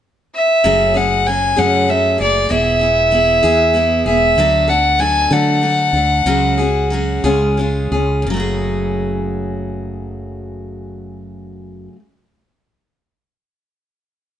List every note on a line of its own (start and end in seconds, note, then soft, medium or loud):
0.35 0.98 E5 medium
0.64 1.54 F#1 medium
0.64 0.95 F#2 medium
0.64 0.95 C#3 medium
0.64 0.96 F#3 medium
0.64 0.95 A3 medium
0.64 0.94 C#4 medium
0.64 0.93 G#4 medium
0.94 1.25 F#3 soft
0.94 1.26 A3 soft
0.94 1.26 C#4 soft
0.94 1.26 G#4 soft
0.94 1.29 F#5 medium
1.26 1.57 F#3 soft
1.26 1.57 A3 soft
1.26 1.56 C#4 medium
1.26 1.55 G#4 medium
1.26 1.60 G#5 medium
1.56 2.17 F#2 medium
1.56 1.90 F#2 soft
1.56 1.89 C#3 soft
1.56 1.86 F#3 medium
1.56 1.87 A3 soft
1.56 1.89 C#4 medium
1.56 1.88 G#4 medium
1.56 1.91 F#5 medium
1.88 2.19 F#3 soft
1.88 2.19 A3 soft
1.88 2.20 C#4 soft
1.88 2.17 G#4 soft
1.88 2.20 E5 medium
2.18 2.50 F#1 medium
2.18 2.48 F#3 soft
2.18 2.50 A3 soft
2.18 2.50 G#4 soft
2.18 2.49 D5 medium
2.49 3.40 E1 medium
2.49 2.81 E3 medium
2.49 2.81 B3 medium
2.49 2.80 E4 medium
2.49 2.78 G#4 medium
2.49 4.02 E5 medium
2.79 3.11 B3 soft
2.79 3.12 E4 soft
2.79 3.12 G#4 soft
3.11 3.43 E3 medium
3.11 3.43 B3 medium
3.11 3.42 E4 medium
3.11 3.41 G#4 medium
3.43 4.03 E2 medium
3.43 3.72 E3 soft
3.43 3.73 B3 medium
3.43 3.75 E4 medium
3.43 3.74 G#4 medium
3.73 4.05 E3 soft
3.73 4.06 B3 medium
3.73 4.06 E4 medium
3.73 4.05 G#4 medium
4.05 4.35 E1 medium
4.05 4.38 B3 soft
4.05 4.38 E4 soft
4.05 4.37 G#4 soft
4.05 4.71 E5 medium
4.37 5.26 D2 medium
4.37 4.68 D3 medium
4.37 4.69 F#3 medium
4.37 4.69 A3 medium
4.37 4.69 D4 medium
4.37 4.66 A4 medium
4.68 4.98 A3 soft
4.68 4.99 D4 soft
4.68 4.99 A4 soft
4.68 5.02 F#5 medium
4.99 5.30 F#3 medium
4.99 5.30 A3 medium
4.99 5.30 D4 medium
4.99 5.29 A4 medium
4.99 5.34 G#5 medium
5.31 5.91 D3 medium
5.31 5.63 D3 medium
5.31 5.60 F#3 soft
5.31 5.62 A3 medium
5.31 5.62 D4 medium
5.31 5.62 A4 medium
5.31 7.25 F#5 medium
5.61 5.93 F#3 soft
5.61 5.94 A3 soft
5.61 5.94 D4 medium
5.61 5.92 A4 soft
5.93 6.24 D2 medium
5.93 6.27 A3 soft
5.93 6.26 D4 soft
5.93 6.26 A4 soft
6.26 7.20 C#2 medium
6.26 6.58 C#3 medium
6.26 6.58 F#3 medium
6.26 6.59 C#4 medium
6.26 6.58 F#4 medium
6.26 6.56 G#4 medium
6.58 6.91 C#4 soft
6.58 6.91 F#4 soft
6.58 6.90 G#4 soft
6.90 7.24 F#3 medium
6.90 7.24 C#4 medium
6.90 7.24 F#4 medium
6.90 7.23 G#4 medium
7.24 7.88 C#2 medium
7.24 7.59 C#3 soft
7.24 7.56 G#3 medium
7.24 7.58 C#4 medium
7.24 7.58 F4 medium
7.24 7.57 G#4 medium
7.57 7.92 G#3 medium
7.57 7.92 C#4 medium
7.57 7.93 F4 medium
7.57 7.91 G#4 medium
7.91 8.24 C#2 medium
7.91 8.28 C#4 soft
7.91 8.27 F4 soft
7.91 8.26 G#4 soft
8.22 11.88 F#2 medium
8.26 11.88 F#1 medium
8.26 11.92 C#3 medium
8.26 11.96 F#3 medium
8.34 11.99 A3 medium
8.34 12.02 F#4 medium
8.40 12.05 G#4 medium